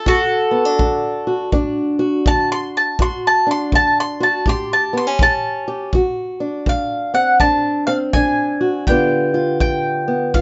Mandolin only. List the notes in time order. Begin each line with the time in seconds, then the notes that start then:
0.08 F#4 A4
2.27 A5
2.52 C6
2.77 A5
3.02 C6
3.27 A5
3.51 C6
3.75 A5
4.00 C6
4.23 A5
4.49 C6
4.73 A5
4.97 C6
5.23 A5
6.69 F5
7.14 F#5
7.40 A5
7.87 F5
8.13 G#5
8.87 G5
9.61 G5
10.34 F5